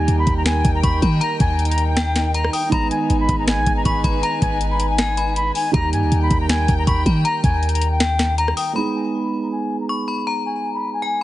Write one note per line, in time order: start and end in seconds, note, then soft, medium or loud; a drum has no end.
0.00 2.67 D#3 medium
0.00 2.67 G3 medium
0.00 2.68 A#3 medium
0.00 2.69 D#4 medium
0.00 8.72 D#4 medium
0.00 2.70 G4 medium
0.00 2.69 A#4 medium
0.00 2.69 G5 medium
0.00 0.16 G#5 medium
0.00 0.42 A#5 loud
0.08 0.26 D#2 loud
0.08 closed hi-hat medium
0.19 0.34 B5 medium
0.27 0.63 D#2 loud
0.27 kick loud
0.27 closed hi-hat medium
0.37 0.44 A#5 medium
0.46 0.73 G#5 loud
0.46 finger snap loud
0.46 snare loud
0.46 closed hi-hat medium
0.65 0.83 D#2 loud
0.65 kick loud
0.65 closed hi-hat medium
0.75 0.82 A#5 medium
0.83 1.02 D#2 loud
0.83 0.99 B5 medium
0.83 1.01 C#6 medium
0.83 kick loud
0.83 closed hi-hat medium
1.02 1.20 D#3 loud
1.02 1.20 B5 medium
1.02 kick loud
1.02 closed hi-hat medium
1.21 1.93 A#5 loud
1.21 1.37 A#5 loud
1.21 closed hi-hat medium
1.40 2.49 D#2 loud
1.40 1.67 G#5 medium
1.40 kick loud
1.40 closed hi-hat medium
1.59 closed hi-hat soft
1.65 1.85 A#5 medium
1.65 closed hi-hat medium
1.71 closed hi-hat medium
1.78 closed hi-hat medium
1.88 2.32 G5 medium
1.97 2.32 G5 medium
1.97 finger snap loud
1.97 snare loud
1.97 closed hi-hat medium
2.16 finger snap medium
2.16 snare loud
2.16 closed hi-hat medium
2.34 2.50 A#5 medium
2.34 2.52 A#5 medium
2.34 closed hi-hat medium
2.44 cross-stick loud
2.53 2.69 G5 medium
2.53 2.71 D#6 medium
2.53 open hi-hat medium
2.69 2.90 G#1 loud
2.69 5.69 D#3 medium
2.69 5.69 G#3 medium
2.69 5.70 B3 medium
2.69 5.71 B4 medium
2.69 5.71 G#5 medium
2.69 2.88 A#5 loud
2.69 3.44 B5 loud
2.69 kick loud
2.69 closed hi-hat medium
2.74 5.71 D#4 medium
2.91 3.18 G#5 medium
2.91 closed hi-hat medium
3.10 3.28 G#1 loud
3.10 closed hi-hat medium
3.20 3.36 B5 medium
3.29 3.59 G#1 loud
3.29 kick loud
3.29 closed hi-hat medium
3.39 3.46 A#5 medium
3.48 3.75 G#5 medium
3.48 finger snap loud
3.48 snare loud
3.48 closed hi-hat medium
3.58 3.66 A#1 loud
3.66 3.85 G#1 loud
3.66 kick loud
3.66 closed hi-hat medium
3.77 3.84 A#5 medium
3.85 4.03 G#1 loud
3.85 4.01 B5 medium
3.85 4.03 C#6 medium
3.85 kick loud
3.85 closed hi-hat medium
4.04 4.22 G#1 loud
4.04 4.22 B5 medium
4.04 kick loud
4.04 closed hi-hat medium
4.23 4.39 A#5 loud
4.23 4.95 A#5 loud
4.23 closed hi-hat medium
4.42 5.51 G#1 loud
4.42 4.69 G#5 medium
4.42 kick loud
4.42 closed hi-hat medium
4.61 closed hi-hat medium
4.71 4.86 B5 medium
4.80 closed hi-hat medium
4.90 5.34 G#5 medium
4.98 5.17 G#5 medium
4.98 finger snap loud
4.98 snare loud
4.98 closed hi-hat medium
5.17 5.71 B5 medium
5.17 closed hi-hat medium
5.36 5.52 B5 medium
5.36 closed hi-hat medium
5.55 5.71 G#5 medium
5.55 open hi-hat medium
5.71 5.94 D#2 loud
5.71 8.71 D#3 medium
5.71 8.71 G3 medium
5.71 8.72 A#3 medium
5.71 8.73 A#4 medium
5.71 8.73 G5 loud
5.71 6.45 A#5 loud
5.71 5.90 A#5 loud
5.71 kick loud
5.71 closed hi-hat medium
5.75 8.73 D#4 medium
5.75 8.73 G4 medium
5.93 6.04 G2 loud
5.93 6.20 G#5 medium
5.93 closed hi-hat medium
6.03 6.11 D#2 loud
6.12 6.30 D#2 loud
6.12 closed hi-hat medium
6.23 6.38 B5 medium
6.31 6.67 D#2 loud
6.31 kick loud
6.31 closed hi-hat medium
6.41 6.48 A#5 medium
6.49 6.77 G#5 loud
6.49 finger snap loud
6.49 snare loud
6.49 closed hi-hat medium
6.68 6.86 D#2 loud
6.68 kick loud
6.68 closed hi-hat medium
6.78 6.86 A#5 medium
6.87 7.05 D#2 loud
6.87 7.03 B5 medium
6.87 7.05 C#6 medium
6.87 kick loud
6.87 closed hi-hat medium
7.06 7.24 D#3 loud
7.06 7.24 B5 medium
7.06 kick loud
7.06 closed hi-hat medium
7.25 7.96 A#5 loud
7.25 7.41 A#5 loud
7.25 closed hi-hat medium
7.44 8.53 D#2 loud
7.44 7.71 G#5 medium
7.44 kick loud
7.44 closed hi-hat medium
7.63 closed hi-hat soft
7.69 7.88 A#5 medium
7.69 closed hi-hat medium
7.75 closed hi-hat medium
7.81 closed hi-hat medium
7.92 8.35 G5 medium
8.00 8.36 G5 medium
8.00 finger snap loud
8.00 snare loud
8.00 closed hi-hat medium
8.19 finger snap medium
8.19 snare medium
8.19 closed hi-hat medium
8.38 8.56 A#5 medium
8.38 8.54 A#5 medium
8.38 closed hi-hat medium
8.48 cross-stick loud
8.57 8.73 G5 medium
8.57 8.75 D#6 medium
8.57 open hi-hat medium
8.73 11.23 G#3 medium
8.73 11.23 B3 medium
8.73 11.23 D#4 medium
8.73 8.92 A#5 loud
8.73 9.47 B5 medium
8.79 11.23 G#4 medium
8.95 9.22 G#5 medium
9.24 9.40 B5 medium
9.43 9.50 A#5 medium
9.52 9.79 G#5 medium
9.81 9.88 A#5 medium
9.89 10.05 B5 medium
9.89 10.07 C#6 medium
10.08 10.26 B5 medium
10.27 10.42 A#5 loud
10.27 10.98 A#5 loud
10.46 10.73 G#5 medium
10.74 10.90 B5 medium
10.94 11.23 G#5 medium
11.02 11.20 G#5 medium